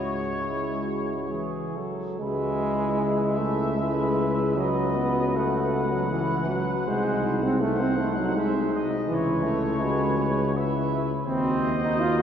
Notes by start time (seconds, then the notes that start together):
Already playing: C#2 G#3 E4 F#4 C#5
0.37 E4
0.83 F#4
1.29 E3 G#4
1.75 F#3 A4
2.20 C#2 G#3 F#4 B4 E5
2.62 E4
3.00 B4 E5
3.39 A3
3.78 G#3 E4 B4
4.57 F#3 F#4 B4 D#5
4.96 B3
5.35 A3 B4 F#5
5.93 F#3
6.10 E3 F#4 B4
6.49 F#3
6.87 C2 G#3 D#4 C5
7.44 C4
7.61 A3 D#4 C5 F#5
7.81 C4
8.00 A3
8.18 F#3
8.35 G#3 C5 E5
8.74 D#5
9.08 C#2 E3 E4 B4 C#5
9.44 A3
9.80 G#3 F#4 B4
10.19 B4
10.53 E4 B4 E5
11.25 D#2 C4 F#4 C5 D#5
11.84 D#4
12.01 F4